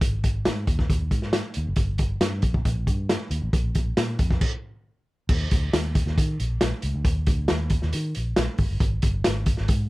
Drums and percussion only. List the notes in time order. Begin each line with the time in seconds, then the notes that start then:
0.01 kick, closed hi-hat
0.24 kick, closed hi-hat
0.45 snare, closed hi-hat
0.67 kick, closed hi-hat
0.79 kick, snare
0.90 kick, closed hi-hat
1.11 kick, closed hi-hat
1.22 snare
1.33 snare, closed hi-hat
1.54 closed hi-hat
1.76 kick, closed hi-hat
1.98 kick, closed hi-hat
2.21 snare, closed hi-hat
2.42 kick, closed hi-hat
2.54 kick
2.65 kick, closed hi-hat
2.87 kick, closed hi-hat
3.09 snare, closed hi-hat
3.31 closed hi-hat
3.53 kick, closed hi-hat
3.75 kick, closed hi-hat
3.97 snare, closed hi-hat
4.19 kick, closed hi-hat
4.30 kick, snare
4.41 kick, crash
5.29 kick, crash
5.51 kick, closed hi-hat
5.73 snare, closed hi-hat
5.95 kick, closed hi-hat
6.07 snare
6.18 kick, closed hi-hat
6.40 closed hi-hat
6.61 snare, closed hi-hat
6.82 closed hi-hat
7.05 kick, closed hi-hat
7.27 kick, closed hi-hat
7.48 snare, closed hi-hat
7.70 kick, closed hi-hat
7.82 snare
7.93 closed hi-hat
8.15 closed hi-hat
8.36 snare, closed hi-hat
8.58 kick, open hi-hat
8.80 kick, closed hi-hat
9.02 kick, closed hi-hat
9.24 snare, closed hi-hat
9.46 kick, closed hi-hat
9.57 snare
9.68 kick, closed hi-hat